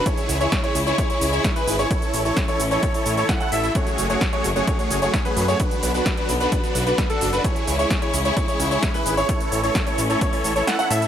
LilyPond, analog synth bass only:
\new Staff \with { instrumentName = "Analog synth bass" } { \clef bass \time 4/4 \key a \major \tempo 4 = 130 r8 cis,8 r8 cis,8 r8 cis,8 r8 gis,,8 | r8 a,,8 r8 a,,8 r8 a,8 r8 a,,8 | r8 fis,,8 r8 fis,,8 r8 fis,,8 r8 fis,8 | r8 b,,8 r8 b,,8 r8 b,,8 r8 fis,,8 |
r8 cis,8 r8 cis,8 r8 cis,8 r8 gis,,8 | r8 a,,8 r8 a,,8 r8 a,,8 r8 a,8 | }